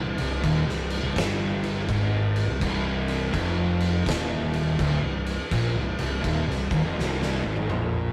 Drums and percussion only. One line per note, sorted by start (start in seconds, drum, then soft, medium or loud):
0.18 crash medium
0.44 kick loud
0.44 crash medium
0.69 snare soft
0.90 crash medium
1.16 kick loud
1.16 snare loud
1.16 crash medium
1.63 crash medium
1.89 kick loud
1.89 crash medium
2.36 crash medium
2.61 kick loud
2.61 crash medium
3.08 crash medium
3.34 kick loud
3.34 crash medium
3.80 crash medium
4.06 kick loud
4.06 snare loud
4.06 crash medium
4.53 crash medium
4.79 kick loud
4.79 crash medium
5.26 crash medium
5.51 kick loud
5.51 crash medium
5.99 crash medium
6.24 kick loud
6.24 crash medium
6.51 snare soft
6.71 kick loud
6.71 crash medium
6.99 snare medium
7.22 snare medium
7.56 high tom medium
7.70 mid tom medium